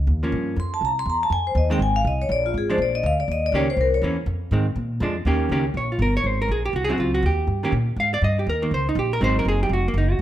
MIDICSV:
0, 0, Header, 1, 4, 480
1, 0, Start_track
1, 0, Tempo, 246812
1, 630, Time_signature, 4, 2, 24, 8
1, 19868, End_track
2, 0, Start_track
2, 0, Title_t, "Vibraphone"
2, 0, Program_c, 0, 11
2, 1162, Note_on_c, 0, 84, 81
2, 1412, Note_off_c, 0, 84, 0
2, 1435, Note_on_c, 0, 81, 85
2, 1605, Note_off_c, 0, 81, 0
2, 1651, Note_on_c, 0, 82, 83
2, 1896, Note_off_c, 0, 82, 0
2, 1931, Note_on_c, 0, 84, 110
2, 2094, Note_off_c, 0, 84, 0
2, 2133, Note_on_c, 0, 82, 80
2, 2378, Note_off_c, 0, 82, 0
2, 2395, Note_on_c, 0, 81, 91
2, 2566, Note_off_c, 0, 81, 0
2, 2577, Note_on_c, 0, 80, 94
2, 2839, Note_off_c, 0, 80, 0
2, 2859, Note_on_c, 0, 72, 63
2, 3037, Note_off_c, 0, 72, 0
2, 3066, Note_on_c, 0, 75, 68
2, 3324, Note_off_c, 0, 75, 0
2, 3352, Note_on_c, 0, 79, 89
2, 3525, Note_off_c, 0, 79, 0
2, 3546, Note_on_c, 0, 80, 91
2, 3804, Note_off_c, 0, 80, 0
2, 3812, Note_on_c, 0, 77, 103
2, 3994, Note_off_c, 0, 77, 0
2, 4033, Note_on_c, 0, 75, 84
2, 4288, Note_off_c, 0, 75, 0
2, 4308, Note_on_c, 0, 73, 85
2, 4482, Note_off_c, 0, 73, 0
2, 4504, Note_on_c, 0, 74, 90
2, 4763, Note_off_c, 0, 74, 0
2, 4782, Note_on_c, 0, 65, 74
2, 4959, Note_off_c, 0, 65, 0
2, 5012, Note_on_c, 0, 68, 67
2, 5257, Note_off_c, 0, 68, 0
2, 5263, Note_on_c, 0, 72, 88
2, 5440, Note_off_c, 0, 72, 0
2, 5485, Note_on_c, 0, 74, 79
2, 5734, Note_off_c, 0, 74, 0
2, 5740, Note_on_c, 0, 75, 98
2, 5918, Note_off_c, 0, 75, 0
2, 5957, Note_on_c, 0, 77, 97
2, 6209, Note_off_c, 0, 77, 0
2, 6224, Note_on_c, 0, 74, 81
2, 6400, Note_off_c, 0, 74, 0
2, 6451, Note_on_c, 0, 75, 94
2, 6696, Note_off_c, 0, 75, 0
2, 6733, Note_on_c, 0, 74, 87
2, 6895, Note_off_c, 0, 74, 0
2, 6931, Note_on_c, 0, 73, 79
2, 7177, Note_off_c, 0, 73, 0
2, 7197, Note_on_c, 0, 72, 89
2, 7367, Note_off_c, 0, 72, 0
2, 7407, Note_on_c, 0, 70, 76
2, 7654, Note_off_c, 0, 70, 0
2, 7669, Note_on_c, 0, 73, 91
2, 7776, Note_off_c, 0, 73, 0
2, 19868, End_track
3, 0, Start_track
3, 0, Title_t, "Hollow-body jazz guitar"
3, 0, Program_c, 1, 26
3, 445, Note_on_c, 1, 53, 58
3, 455, Note_on_c, 1, 58, 61
3, 470, Note_on_c, 1, 61, 68
3, 1076, Note_off_c, 1, 53, 0
3, 1082, Note_off_c, 1, 58, 0
3, 1089, Note_off_c, 1, 61, 0
3, 3306, Note_on_c, 1, 51, 65
3, 3323, Note_on_c, 1, 56, 81
3, 3326, Note_on_c, 1, 60, 80
3, 3487, Note_off_c, 1, 51, 0
3, 3495, Note_off_c, 1, 56, 0
3, 3497, Note_off_c, 1, 60, 0
3, 5242, Note_on_c, 1, 53, 74
3, 5251, Note_on_c, 1, 56, 64
3, 5263, Note_on_c, 1, 62, 76
3, 5415, Note_off_c, 1, 53, 0
3, 5420, Note_off_c, 1, 56, 0
3, 5425, Note_off_c, 1, 62, 0
3, 6884, Note_on_c, 1, 51, 73
3, 6895, Note_on_c, 1, 58, 76
3, 6905, Note_on_c, 1, 61, 84
3, 6909, Note_on_c, 1, 67, 82
3, 7132, Note_off_c, 1, 51, 0
3, 7138, Note_off_c, 1, 58, 0
3, 7143, Note_off_c, 1, 61, 0
3, 7145, Note_off_c, 1, 67, 0
3, 7839, Note_on_c, 1, 52, 67
3, 7855, Note_on_c, 1, 58, 72
3, 7862, Note_on_c, 1, 61, 71
3, 8089, Note_off_c, 1, 52, 0
3, 8098, Note_off_c, 1, 58, 0
3, 8101, Note_off_c, 1, 61, 0
3, 8796, Note_on_c, 1, 51, 65
3, 8808, Note_on_c, 1, 56, 65
3, 8813, Note_on_c, 1, 60, 66
3, 9048, Note_off_c, 1, 51, 0
3, 9054, Note_off_c, 1, 56, 0
3, 9056, Note_off_c, 1, 60, 0
3, 9761, Note_on_c, 1, 53, 64
3, 9775, Note_on_c, 1, 56, 67
3, 9781, Note_on_c, 1, 62, 69
3, 10010, Note_off_c, 1, 53, 0
3, 10017, Note_off_c, 1, 56, 0
3, 10020, Note_off_c, 1, 62, 0
3, 10238, Note_on_c, 1, 51, 63
3, 10241, Note_on_c, 1, 58, 67
3, 10250, Note_on_c, 1, 61, 68
3, 10259, Note_on_c, 1, 67, 67
3, 10693, Note_off_c, 1, 51, 0
3, 10695, Note_off_c, 1, 58, 0
3, 10700, Note_off_c, 1, 61, 0
3, 10704, Note_off_c, 1, 67, 0
3, 10725, Note_on_c, 1, 51, 60
3, 10732, Note_on_c, 1, 58, 72
3, 10739, Note_on_c, 1, 61, 70
3, 10742, Note_on_c, 1, 67, 77
3, 10972, Note_off_c, 1, 51, 0
3, 10975, Note_off_c, 1, 58, 0
3, 10979, Note_off_c, 1, 61, 0
3, 10981, Note_off_c, 1, 67, 0
3, 11225, Note_on_c, 1, 73, 78
3, 11482, Note_off_c, 1, 73, 0
3, 11513, Note_on_c, 1, 65, 51
3, 11684, Note_off_c, 1, 65, 0
3, 11709, Note_on_c, 1, 70, 82
3, 11965, Note_off_c, 1, 70, 0
3, 11993, Note_on_c, 1, 73, 99
3, 12200, Note_off_c, 1, 73, 0
3, 12200, Note_on_c, 1, 72, 79
3, 12450, Note_off_c, 1, 72, 0
3, 12477, Note_on_c, 1, 70, 90
3, 12646, Note_off_c, 1, 70, 0
3, 12671, Note_on_c, 1, 68, 74
3, 12925, Note_off_c, 1, 68, 0
3, 12941, Note_on_c, 1, 67, 83
3, 13118, Note_off_c, 1, 67, 0
3, 13144, Note_on_c, 1, 66, 80
3, 13282, Note_off_c, 1, 66, 0
3, 13311, Note_on_c, 1, 68, 91
3, 13394, Note_on_c, 1, 54, 64
3, 13412, Note_on_c, 1, 60, 70
3, 13421, Note_on_c, 1, 63, 77
3, 13446, Note_off_c, 1, 68, 0
3, 13476, Note_off_c, 1, 63, 0
3, 13476, Note_on_c, 1, 66, 95
3, 13602, Note_off_c, 1, 66, 0
3, 13610, Note_on_c, 1, 65, 69
3, 13874, Note_off_c, 1, 65, 0
3, 13894, Note_on_c, 1, 66, 84
3, 14030, Note_off_c, 1, 54, 0
3, 14039, Note_off_c, 1, 60, 0
3, 14074, Note_off_c, 1, 66, 0
3, 14117, Note_on_c, 1, 67, 75
3, 14844, Note_on_c, 1, 51, 69
3, 14850, Note_off_c, 1, 67, 0
3, 14857, Note_on_c, 1, 58, 72
3, 14870, Note_on_c, 1, 61, 76
3, 14873, Note_on_c, 1, 67, 78
3, 15015, Note_off_c, 1, 51, 0
3, 15021, Note_off_c, 1, 58, 0
3, 15028, Note_off_c, 1, 61, 0
3, 15029, Note_off_c, 1, 67, 0
3, 15557, Note_on_c, 1, 77, 85
3, 15808, Note_off_c, 1, 77, 0
3, 15826, Note_on_c, 1, 74, 98
3, 16000, Note_off_c, 1, 74, 0
3, 16030, Note_on_c, 1, 75, 89
3, 16284, Note_off_c, 1, 75, 0
3, 16321, Note_on_c, 1, 67, 53
3, 16487, Note_off_c, 1, 67, 0
3, 16521, Note_on_c, 1, 70, 90
3, 16770, Note_off_c, 1, 70, 0
3, 16771, Note_on_c, 1, 51, 79
3, 16779, Note_on_c, 1, 58, 69
3, 16938, Note_off_c, 1, 51, 0
3, 16942, Note_off_c, 1, 58, 0
3, 16999, Note_on_c, 1, 72, 84
3, 17249, Note_off_c, 1, 72, 0
3, 17285, Note_on_c, 1, 63, 75
3, 17450, Note_off_c, 1, 63, 0
3, 17482, Note_on_c, 1, 67, 73
3, 17731, Note_off_c, 1, 67, 0
3, 17759, Note_on_c, 1, 70, 96
3, 17910, Note_on_c, 1, 54, 58
3, 17924, Note_on_c, 1, 60, 68
3, 17927, Note_off_c, 1, 70, 0
3, 17936, Note_on_c, 1, 63, 68
3, 17969, Note_on_c, 1, 72, 100
3, 18214, Note_off_c, 1, 72, 0
3, 18261, Note_on_c, 1, 70, 89
3, 18418, Note_off_c, 1, 70, 0
3, 18446, Note_on_c, 1, 68, 84
3, 18693, Note_off_c, 1, 68, 0
3, 18726, Note_on_c, 1, 67, 89
3, 18890, Note_off_c, 1, 67, 0
3, 18929, Note_on_c, 1, 66, 72
3, 19175, Note_off_c, 1, 66, 0
3, 19208, Note_off_c, 1, 60, 0
3, 19216, Note_on_c, 1, 58, 70
3, 19231, Note_off_c, 1, 54, 0
3, 19244, Note_off_c, 1, 63, 0
3, 19375, Note_off_c, 1, 58, 0
3, 19404, Note_on_c, 1, 63, 80
3, 19673, Note_off_c, 1, 63, 0
3, 19673, Note_on_c, 1, 66, 105
3, 19844, Note_off_c, 1, 66, 0
3, 19868, End_track
4, 0, Start_track
4, 0, Title_t, "Upright bass"
4, 0, Program_c, 2, 32
4, 136, Note_on_c, 2, 39, 87
4, 608, Note_off_c, 2, 39, 0
4, 627, Note_on_c, 2, 43, 89
4, 1083, Note_off_c, 2, 43, 0
4, 1095, Note_on_c, 2, 41, 85
4, 1563, Note_off_c, 2, 41, 0
4, 1575, Note_on_c, 2, 36, 83
4, 2042, Note_off_c, 2, 36, 0
4, 2053, Note_on_c, 2, 40, 87
4, 2515, Note_off_c, 2, 40, 0
4, 2527, Note_on_c, 2, 41, 89
4, 3004, Note_off_c, 2, 41, 0
4, 3012, Note_on_c, 2, 39, 95
4, 3474, Note_off_c, 2, 39, 0
4, 3486, Note_on_c, 2, 32, 90
4, 3964, Note_off_c, 2, 32, 0
4, 3978, Note_on_c, 2, 36, 95
4, 4441, Note_off_c, 2, 36, 0
4, 4453, Note_on_c, 2, 34, 93
4, 4927, Note_off_c, 2, 34, 0
4, 4937, Note_on_c, 2, 32, 83
4, 5395, Note_off_c, 2, 32, 0
4, 5407, Note_on_c, 2, 34, 85
4, 5884, Note_off_c, 2, 34, 0
4, 5897, Note_on_c, 2, 38, 93
4, 6364, Note_off_c, 2, 38, 0
4, 6376, Note_on_c, 2, 39, 83
4, 6834, Note_off_c, 2, 39, 0
4, 6846, Note_on_c, 2, 37, 93
4, 7312, Note_off_c, 2, 37, 0
4, 7324, Note_on_c, 2, 36, 89
4, 7802, Note_off_c, 2, 36, 0
4, 7812, Note_on_c, 2, 40, 93
4, 8276, Note_off_c, 2, 40, 0
4, 8287, Note_on_c, 2, 41, 90
4, 8759, Note_off_c, 2, 41, 0
4, 8770, Note_on_c, 2, 44, 89
4, 9238, Note_off_c, 2, 44, 0
4, 9249, Note_on_c, 2, 46, 87
4, 9718, Note_off_c, 2, 46, 0
4, 9730, Note_on_c, 2, 41, 102
4, 10200, Note_off_c, 2, 41, 0
4, 10211, Note_on_c, 2, 39, 89
4, 10670, Note_off_c, 2, 39, 0
4, 10681, Note_on_c, 2, 37, 82
4, 11152, Note_off_c, 2, 37, 0
4, 11163, Note_on_c, 2, 34, 81
4, 11631, Note_off_c, 2, 34, 0
4, 11643, Note_on_c, 2, 31, 91
4, 12121, Note_off_c, 2, 31, 0
4, 12130, Note_on_c, 2, 32, 82
4, 12598, Note_off_c, 2, 32, 0
4, 12610, Note_on_c, 2, 34, 85
4, 13076, Note_off_c, 2, 34, 0
4, 13087, Note_on_c, 2, 36, 85
4, 13563, Note_off_c, 2, 36, 0
4, 13571, Note_on_c, 2, 37, 91
4, 14040, Note_off_c, 2, 37, 0
4, 14052, Note_on_c, 2, 39, 93
4, 14521, Note_off_c, 2, 39, 0
4, 14532, Note_on_c, 2, 43, 83
4, 15001, Note_off_c, 2, 43, 0
4, 15013, Note_on_c, 2, 46, 91
4, 15477, Note_off_c, 2, 46, 0
4, 15489, Note_on_c, 2, 44, 90
4, 15964, Note_off_c, 2, 44, 0
4, 15979, Note_on_c, 2, 43, 93
4, 16449, Note_off_c, 2, 43, 0
4, 16463, Note_on_c, 2, 39, 92
4, 16931, Note_off_c, 2, 39, 0
4, 16941, Note_on_c, 2, 37, 85
4, 17399, Note_off_c, 2, 37, 0
4, 17411, Note_on_c, 2, 34, 96
4, 17885, Note_off_c, 2, 34, 0
4, 17907, Note_on_c, 2, 32, 94
4, 18367, Note_off_c, 2, 32, 0
4, 18379, Note_on_c, 2, 30, 89
4, 18840, Note_off_c, 2, 30, 0
4, 18851, Note_on_c, 2, 29, 86
4, 19315, Note_off_c, 2, 29, 0
4, 19327, Note_on_c, 2, 30, 94
4, 19803, Note_off_c, 2, 30, 0
4, 19868, End_track
0, 0, End_of_file